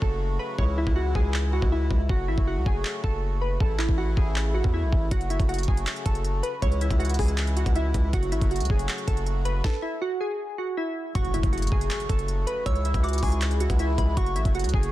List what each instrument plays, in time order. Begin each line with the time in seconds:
Already playing: accordion C#3 F#3 A3 F#4
0.02 808-style bass F#1, synth keys A4, kick
0.39 synth keys B4
0.58 808-style bass C#2, accordion E3 G#3 E4, synth keys C#5, kick
0.78 synth keys E4
0.87 808-style bass C#2, kick
0.96 synth keys F#4
1.15 808-style bass C#2, synth keys G#4, kick
1.34 clap
1.53 synth keys F#4
1.62 808-style bass C#2, kick
1.72 synth keys E4
1.91 808-style bass C#2, kick
2.09 808-style bass F#1, accordion F#3 A3 F#4, synth keys F#4, kick
2.28 808-style bass A1, synth keys E4
2.38 808-style bass F#1, kick
2.47 synth keys F#4
2.57 808-style bass C#2
2.66 808-style bass F#1, synth keys G#4, kick
2.85 clap
3.04 808-style bass F#1, synth keys A4, kick
3.41 synth keys B4
3.60 808-style bass A1, accordion E3 A3 E4, synth keys A4, kick
3.79 synth keys E4, clap
3.89 808-style bass A1, kick
3.98 synth keys F#4
4.17 808-style bass A1, synth keys G#4, kick
4.36 clap
4.54 synth keys F#4
4.64 808-style bass E2, kick
4.74 synth keys E4
4.83 808-style bass B1
4.93 808-style bass A1, kick
5.11 808-style bass F#1, accordion F#3 A3 F#4, synth keys F#4, kick, closed hi-hat
5.21 closed hi-hat
5.30 synth keys E4, closed hi-hat
5.40 808-style bass F#1, kick, closed hi-hat
5.49 synth keys F#4, closed hi-hat
5.54 closed hi-hat
5.59 closed hi-hat
5.63 closed hi-hat
5.68 808-style bass F#1, synth keys G#4, kick
5.77 closed hi-hat
5.87 clap, closed hi-hat
5.96 closed hi-hat
6.06 808-style bass F#1, synth keys A4, kick, closed hi-hat
6.15 closed hi-hat
6.25 closed hi-hat
6.43 synth keys B4, closed hi-hat
6.62 808-style bass C#2, accordion E3 G#3 E4, synth keys C#5, kick, closed hi-hat
6.72 closed hi-hat
6.81 synth keys E4, closed hi-hat
6.91 808-style bass C#2, kick, closed hi-hat
6.99 synth keys F#4, closed hi-hat
7.05 closed hi-hat
7.09 closed hi-hat
7.14 closed hi-hat
7.19 808-style bass C#2, synth keys G#4, kick, open hi-hat
7.28 closed hi-hat
7.38 clap, closed hi-hat
7.47 closed hi-hat
7.57 synth keys F#4, closed hi-hat
7.66 808-style bass C#2, kick, closed hi-hat
7.75 synth keys E4, closed hi-hat
7.94 808-style bass C#2, kick, closed hi-hat
8.13 808-style bass F#1, accordion C#3 F#3 A3 F#4, synth keys F#4, kick, closed hi-hat
8.23 closed hi-hat
8.32 808-style bass A1, synth keys E4, closed hi-hat
8.41 808-style bass F#1, kick, closed hi-hat
8.51 synth keys F#4, closed hi-hat
8.56 closed hi-hat
8.60 808-style bass C#2, closed hi-hat
8.65 closed hi-hat
8.70 808-style bass F#1, synth keys G#4, kick
8.79 closed hi-hat
8.89 clap, closed hi-hat
8.98 closed hi-hat
9.08 808-style bass F#1, synth keys A4, kick, closed hi-hat
9.17 closed hi-hat
9.26 closed hi-hat
9.45 synth keys B4, closed hi-hat
9.64 synth keys A4, kick, snare
9.82 synth keys E4
10.02 synth keys F#4
10.21 synth keys G#4
10.58 synth keys F#4
10.77 synth keys E4
11.15 808-style bass F#1, accordion C#3 F#3 A3 F#4, synth keys F#4, synth bell C#6, kick, closed hi-hat, impact
11.25 closed hi-hat
11.34 synth keys E4, closed hi-hat
11.43 808-style bass F#1, kick, closed hi-hat
11.53 synth keys F#4, closed hi-hat
11.58 closed hi-hat
11.62 closed hi-hat
11.67 closed hi-hat
11.72 808-style bass F#1, synth keys G#4, kick
11.81 closed hi-hat
11.91 synth bell C#6, clap, closed hi-hat
12.00 closed hi-hat
12.09 808-style bass F#1, synth keys A4, kick, closed hi-hat
12.19 closed hi-hat
12.28 closed hi-hat
12.47 synth keys B4, closed hi-hat
12.66 808-style bass C#2, accordion C#3 E3 G#3 E4, synth keys C#5, synth bell E6, kick, closed hi-hat
12.75 closed hi-hat
12.85 synth keys E4, closed hi-hat
12.94 808-style bass C#2, kick, closed hi-hat
13.03 synth keys F#4, synth bell D6, closed hi-hat
13.09 closed hi-hat
13.13 closed hi-hat
13.18 closed hi-hat
13.23 808-style bass C#2, synth keys G#4, synth bell C#6, kick, open hi-hat
13.32 closed hi-hat
13.42 clap, closed hi-hat
13.51 closed hi-hat
13.60 synth keys F#4, closed hi-hat
13.70 808-style bass C#2, kick, closed hi-hat
13.79 synth keys E4, closed hi-hat
13.98 808-style bass C#2, synth bell B5, kick, closed hi-hat
14.17 808-style bass F#1, accordion F#3 A3 F#4, synth keys F#4, synth bell C#6, kick, closed hi-hat
14.26 closed hi-hat
14.36 808-style bass A1, synth keys E4, closed hi-hat
14.45 808-style bass F#1, kick, closed hi-hat
14.55 synth keys F#4, closed hi-hat
14.59 closed hi-hat
14.64 808-style bass C#2, closed hi-hat
14.69 closed hi-hat
14.74 808-style bass F#1, synth keys G#4, kick
14.83 closed hi-hat